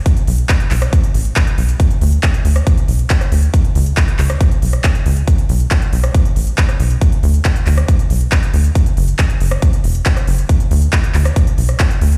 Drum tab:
HH |xxoxxxoxxxoxxxox|xxoxxxoxxxoxxxox|xxoxxxoxxxoxxxox|xxoxxxoxxxoxxxox|
CP |----x-x-----x---|----x-------x---|----x-x-----x---|----x-------x---|
SD |-------r--------|-------r-----r--|-------r---r----|-------r-----r--|
BD |o---o---o---o---|o---o---o---o---|o---o---o---o---|o---o---o---o---|

HH |xxoxxxoxxxoxxxox|xxoxxxoxxxoxxxox|xxoxxxoxxxoxxxox|
CP |----x-x-----x---|----x-------x---|----x-x-----x---|
SD |-------r--------|-------r-----r--|-------r---r----|
BD |o---o---o---o---|o---o---o---o---|o---o---o---o---|